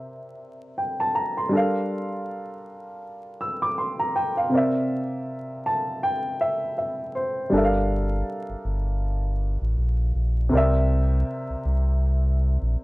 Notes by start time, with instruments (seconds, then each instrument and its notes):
Already playing: upright piano C3 C4 A#4 D5 E5
0.78 upright piano G5
1.00 upright piano A5
1.15 upright piano A#5
1.37 upright piano C6
1.49 upright piano G3 D4 A4
1.55 upright piano A#4 F5
3.41 upright piano E6
3.62 upright piano D6
3.78 upright piano C6
3.99 upright piano A#5
4.16 upright piano G5
4.37 upright piano F5
4.49 upright piano C3 C4
4.53 upright piano A#4 D5
4.57 upright piano E5
5.66 upright piano A5
6.03 upright piano G5
6.41 upright piano E5
6.78 upright piano E5
7.15 upright piano C5
7.50 sub bass G1, upright piano G3 D4 A4
7.56 upright piano A#4 E5
7.64 upright piano F5
8.49 sub bass G1
8.65 sub bass G1
9.62 sub bass A1
9.78 sub bass A#1
10.15 sub bass A#1
10.49 sub bass C2, upright piano C3 C4 A#4
10.55 upright piano D5 E5
11.50 sub bass C2
11.65 sub bass C2
12.62 sub bass A#1